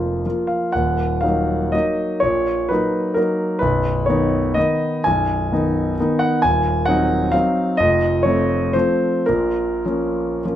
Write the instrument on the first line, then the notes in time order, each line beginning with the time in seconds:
grand piano
Already playing: F1 F2 F3 A#3 F4 D5
0.26 F3 A#3 F4
0.47 F5
0.72 D#1 D#2 F#5
1.21 F#3 A#3 D#4 F5
1.72 F#3 A#3 D#4 D#5
2.20 A#1 A#2 C#5
2.69 F#3 A#3 D#4 B4
3.14 F#3 A#3 D#4 A#4
3.59 B0 B1 B4
4.06 D#3 B3 D#4 C#5
4.54 D#3 B3 D#4 D#5
5.04 B0 B1 G#5
5.52 D#3 B3 D#4
6.00 D#3 B3 D#4
6.19 F#5
6.42 D#1 D#2 G#5
6.86 F#3 C4 D#4 F#5
7.32 F#3 C4 D#4 F5
7.77 F1 F2 D#5
8.23 F3 A3 C4 C#5
8.73 F3 A3 C4 C5
9.26 A#1 A#2 A#4
9.86 F3 A#3 C#4
10.45 F3 A#3 C#4